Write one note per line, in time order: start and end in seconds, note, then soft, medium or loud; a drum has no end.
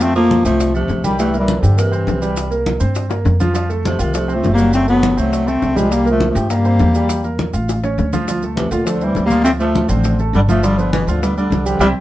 0.00 0.39 F2 medium
0.00 0.10 F3 medium
0.00 0.15 A3 medium
0.00 0.16 C4 loud
0.00 0.10 F4 medium
0.00 high bongo medium
0.00 high conga soft
0.00 maracas medium
0.15 0.43 F3 loud
0.15 0.40 A3 medium
0.15 0.43 A#3 loud
0.15 0.40 A4 medium
0.15 high bongo soft
0.15 high conga soft
0.15 maracas soft
0.30 high bongo medium
0.30 high conga medium
0.30 maracas soft
0.45 0.86 C2 medium
0.45 0.73 F3 medium
0.45 0.73 A3 loud
0.45 0.69 C4 medium
0.45 0.69 C5 medium
0.45 high bongo soft
0.45 maracas medium
0.60 high bongo medium
0.60 high conga soft
0.60 maracas medium
0.74 1.03 C3 medium
0.74 1.02 F3 medium
0.74 0.99 A3 medium
0.74 0.99 A4 medium
0.74 high bongo soft
0.74 high conga soft
0.74 maracas soft
0.88 1.57 C2 medium
0.88 high bongo soft
0.88 low bongo medium
0.88 high conga soft
0.88 maracas soft
1.04 1.18 D#3 medium
1.04 1.16 G3 medium
1.04 1.18 G3 medium
1.04 1.16 G4 medium
1.04 high conga medium
1.04 maracas medium
1.19 1.37 E3 medium
1.19 1.31 G3 medium
1.19 1.38 A3 medium
1.19 1.31 G4 medium
1.19 high bongo medium
1.19 high conga soft
1.19 maracas medium
1.34 1.58 A#3 medium
1.34 1.58 A#4 medium
1.34 high bongo soft
1.34 high conga soft
1.34 maracas soft
1.39 1.61 E3 medium
1.39 1.60 G3 medium
1.48 high bongo medium
1.48 high conga medium
1.48 maracas soft
1.58 1.79 D3 medium
1.58 1.77 F3 medium
1.62 2.04 G2 medium
1.62 1.75 G4 medium
1.62 1.75 G5 medium
1.62 high bongo soft
1.62 maracas medium
1.77 2.63 C3 medium
1.77 2.62 E3 medium
1.77 1.90 A#3 medium
1.77 1.90 A#4 medium
1.77 high bongo medium
1.77 high conga soft
1.77 maracas medium
1.92 2.16 C4 medium
1.92 2.17 C5 medium
1.92 high bongo soft
1.92 high conga soft
1.92 maracas soft
2.07 2.75 C2 medium
2.07 high bongo soft
2.07 low bongo medium
2.07 high conga medium
2.07 maracas soft
2.22 2.46 G3 medium
2.22 2.47 G4 medium
2.22 maracas medium
2.36 high bongo medium
2.36 high conga soft
2.36 maracas medium
2.51 2.75 A#3 medium
2.51 2.76 A#4 medium
2.51 high bongo soft
2.51 high conga soft
2.51 maracas soft
2.66 high bongo medium
2.66 high conga medium
2.66 maracas soft
2.80 3.22 G2 medium
2.80 3.05 C4 medium
2.80 3.05 C5 medium
2.80 high bongo soft
2.80 high conga soft
2.80 maracas medium
2.95 high bongo medium
2.95 high conga soft
2.95 maracas medium
3.09 3.34 A#3 medium
3.09 3.34 A#4 medium
3.09 high bongo loud
3.09 high conga soft
3.09 maracas soft
3.25 3.94 F2 medium
3.25 low bongo medium
3.25 high conga soft
3.25 maracas soft
3.40 3.52 F3 medium
3.40 3.52 F4 medium
3.40 low bongo medium
3.40 high conga medium
3.40 maracas medium
3.54 3.66 F3 medium
3.54 3.67 F4 medium
3.54 high bongo medium
3.54 high conga soft
3.54 maracas medium
3.69 3.94 A3 medium
3.69 3.94 A4 medium
3.69 high bongo soft
3.69 high conga soft
3.69 maracas soft
3.85 4.01 C3 medium
3.85 4.02 F3 loud
3.85 high bongo medium
3.85 high conga medium
3.85 maracas soft
3.99 4.40 C2 medium
3.99 4.15 C3 medium
3.99 4.16 D#3 medium
3.99 4.11 F4 medium
3.99 4.11 F5 medium
3.99 high bongo soft
3.99 maracas medium
4.14 4.36 C3 medium
4.14 4.36 F3 medium
4.14 4.26 A3 medium
4.14 4.26 A4 medium
4.14 high bongo medium
4.14 high conga soft
4.14 maracas medium
4.28 4.53 C4 medium
4.28 4.53 C5 medium
4.28 high bongo soft
4.28 high conga soft
4.28 maracas soft
4.35 4.52 F3 medium
4.35 4.53 A3 medium
4.43 5.12 F#1 medium
4.43 high bongo soft
4.43 low bongo medium
4.43 high conga medium
4.43 maracas soft
4.53 4.71 G3 medium
4.53 4.72 A#3 loud
4.58 4.82 F#3 medium
4.58 4.82 F#4 medium
4.58 maracas medium
4.73 4.88 A3 medium
4.73 4.87 C4 loud
4.73 high bongo medium
4.73 high conga soft
4.73 maracas medium
4.88 5.19 F#3 medium
4.88 5.12 A3 medium
4.88 5.20 B3 loud
4.88 5.12 A4 medium
4.88 high bongo soft
4.88 high conga soft
4.88 maracas soft
5.03 high bongo medium
5.03 high conga medium
5.03 maracas soft
5.17 5.59 C2 medium
5.17 5.50 F#3 medium
5.17 5.49 A3 medium
5.17 5.41 C4 medium
5.17 5.42 C5 medium
5.17 high bongo soft
5.17 high conga soft
5.17 maracas medium
5.33 high bongo medium
5.33 high conga soft
5.33 maracas medium
5.47 5.71 A3 medium
5.47 5.79 A3 medium
5.47 5.79 C4 loud
5.47 5.72 A4 medium
5.47 high bongo soft
5.47 high conga soft
5.47 maracas soft
5.62 6.30 C2 medium
5.62 high bongo soft
5.62 low bongo medium
5.62 high conga soft
5.62 maracas soft
5.76 5.93 F3 medium
5.76 5.88 G3 medium
5.76 5.93 G#3 medium
5.76 5.88 G4 medium
5.76 high conga medium
5.76 maracas medium
5.90 6.03 G3 medium
5.90 6.09 G3 medium
5.90 6.10 A#3 loud
5.90 6.03 G4 medium
5.90 high bongo medium
5.90 high conga soft
5.90 maracas medium
6.05 6.30 A#3 medium
6.05 6.30 A#4 medium
6.05 high bongo soft
6.05 high conga soft
6.05 maracas soft
6.09 6.28 F3 medium
6.09 6.29 A3 medium
6.20 high bongo medium
6.20 high conga medium
6.20 maracas soft
6.30 6.48 F3 medium
6.30 6.49 A3 medium
6.35 6.76 G2 loud
6.35 6.47 G4 medium
6.35 6.48 G5 medium
6.35 high bongo soft
6.35 maracas medium
6.50 7.35 G3 medium
6.50 7.34 A#3 medium
6.50 6.63 A#3 medium
6.50 6.63 A#4 medium
6.50 high bongo medium
6.50 high conga soft
6.50 maracas medium
6.65 6.89 C4 medium
6.65 6.89 C5 medium
6.65 high bongo soft
6.65 high conga soft
6.65 maracas soft
6.79 7.48 E2 medium
6.79 high bongo soft
6.79 low bongo medium
6.79 high conga medium
6.79 maracas soft
6.95 7.19 G3 medium
6.95 7.19 G4 medium
6.95 maracas medium
7.09 high bongo medium
7.09 high conga soft
7.09 maracas loud
7.23 7.48 A#3 medium
7.23 7.48 A#4 medium
7.23 high bongo soft
7.23 high conga soft
7.23 maracas soft
7.39 high bongo medium
7.39 high conga medium
7.39 maracas soft
7.53 7.95 A1 medium
7.53 7.78 F4 medium
7.53 7.78 F5 medium
7.53 high bongo soft
7.53 high conga soft
7.53 maracas medium
7.68 high bongo medium
7.68 high conga soft
7.68 maracas medium
7.83 8.07 C#4 medium
7.83 8.08 C#5 medium
7.83 low bongo medium
7.83 high conga soft
7.83 maracas soft
7.98 8.66 D2 medium
7.98 low bongo medium
7.98 high conga soft
7.98 maracas soft
8.13 8.25 F3 medium
8.13 8.25 F4 medium
8.13 low bongo medium
8.13 high conga medium
8.13 maracas medium
8.28 8.41 F3 medium
8.28 8.40 F4 medium
8.28 high bongo medium
8.28 high conga soft
8.28 maracas medium
8.42 8.67 A3 medium
8.42 8.67 A4 medium
8.42 high bongo soft
8.42 high conga soft
8.42 maracas soft
8.56 8.70 C3 medium
8.56 8.70 E3 medium
8.56 high bongo medium
8.56 high conga medium
8.56 maracas soft
8.71 9.12 D2 medium
8.71 8.87 A#2 medium
8.71 8.87 D3 medium
8.71 8.84 F4 medium
8.71 8.84 F5 medium
8.71 high bongo soft
8.71 maracas medium
8.85 9.06 D3 medium
8.85 9.06 F3 medium
8.85 8.99 A3 medium
8.85 8.99 A4 medium
8.85 high bongo medium
8.85 high conga soft
8.85 maracas medium
9.01 9.25 E3 medium
9.01 9.25 G3 medium
9.01 9.26 C4 medium
9.01 9.26 C5 medium
9.01 high bongo soft
9.01 high conga soft
9.01 maracas soft
9.15 9.84 D2 medium
9.15 high bongo soft
9.15 low bongo medium
9.15 high conga medium
9.15 maracas soft
9.25 9.44 G3 medium
9.25 9.43 A#3 loud
9.30 9.55 F3 medium
9.30 9.55 F4 medium
9.30 high conga medium
9.30 maracas medium
9.44 9.51 A3 medium
9.44 9.51 C4 loud
9.44 high bongo medium
9.44 high conga soft
9.44 maracas medium
9.59 9.90 F3 medium
9.59 9.91 A3 loud
9.59 9.84 A3 medium
9.59 9.84 A4 medium
9.59 high bongo soft
9.59 high conga soft
9.59 maracas soft
9.75 high bongo medium
9.75 high conga medium
9.75 maracas soft
9.88 10.30 A1 medium
9.88 10.18 D3 medium
9.88 10.19 F3 loud
9.88 10.14 C4 medium
9.88 10.14 C5 medium
9.88 high bongo soft
9.88 maracas medium
10.04 high bongo medium
10.04 high conga soft
10.04 maracas medium
10.19 10.43 A3 medium
10.19 10.44 A4 medium
10.19 high bongo soft
10.19 high conga soft
10.19 maracas soft
10.33 11.02 G1 medium
10.33 10.41 D3 medium
10.33 10.41 G3 loud
10.33 high bongo soft
10.33 low bongo medium
10.33 high conga soft
10.33 maracas soft
10.48 10.67 F3 medium
10.48 10.61 F3 medium
10.48 10.65 A3 loud
10.48 10.61 F4 medium
10.48 high conga medium
10.48 maracas medium
10.63 10.78 D3 medium
10.63 10.75 F3 medium
10.63 10.79 G3 loud
10.63 10.76 F4 medium
10.63 high bongo medium
10.63 high conga soft
10.63 maracas medium
10.78 10.92 D3 medium
10.78 10.92 F3 medium
10.78 11.02 B3 medium
10.78 11.03 B4 medium
10.78 high bongo soft
10.78 high conga soft
10.78 maracas soft
10.92 11.10 B2 medium
10.92 11.10 E3 loud
10.92 high bongo medium
10.92 high conga loud
10.92 maracas soft
11.07 11.48 D2 medium
11.07 11.22 D3 medium
11.07 11.22 F3 medium
11.07 11.20 F4 medium
11.07 11.20 F5 medium
11.07 high bongo soft
11.07 maracas medium
11.22 11.36 D3 medium
11.22 11.36 G3 medium
11.22 11.34 B3 medium
11.22 11.34 B4 medium
11.22 high bongo medium
11.22 high conga soft
11.22 maracas medium
11.36 11.66 D3 medium
11.36 11.69 G3 medium
11.36 11.61 D4 medium
11.36 11.62 D5 medium
11.36 high bongo soft
11.36 high conga soft
11.36 maracas soft
11.50 11.78 C2 medium
11.50 high bongo soft
11.50 low bongo medium
11.50 high conga medium
11.50 maracas soft
11.66 11.79 D3 medium
11.66 11.80 F3 medium
11.66 11.78 G3 medium
11.66 11.78 G4 medium
11.66 maracas medium
11.79 11.91 C2 medium
11.79 11.87 C3 loud
11.79 11.88 G3 loud
11.79 11.90 C4 loud
11.79 11.90 E4 loud
11.79 11.90 G4 loud
11.79 low bongo loud
11.79 high conga loud
11.79 maracas loud